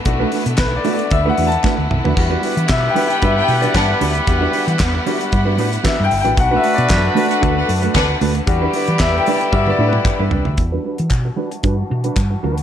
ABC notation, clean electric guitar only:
X:1
M:4/4
L:1/16
Q:1/4=114
K:Em
V:1 name="Clean electric guitar"
z [A,DFB] [A,DFB] z3 [A,DFB] z2 [A,DFB] [A,DFB] z [A,DFB] z2 [A,DFB] | z [G,DFB] [G,DFB] z3 [G,DFB] z [G,DFB] z2 [G,DFB] z2 [G,DFB] z | z [G,DFB] [G,DFB] z3 [G,DFB] z2 [G,DFB] [G,DFB] z [G,DFB] z2 [G,DFB] | z [A,DFB] [A,DFB] z3 [A,DFB] z [A,DFB] z2 [A,DFB] z2 [A,DFB] z |
z [G,DEB] [G,DEB] z3 [G,DEB] z2 [G,DEB] [G,DEB] z2 [G,DEB] [G,DEB] z | z [G,DFB] [G,DFB] z3 [G,DFB] z [G,DFB] z2 [G,DFB] z2 [G,DFB]2 |]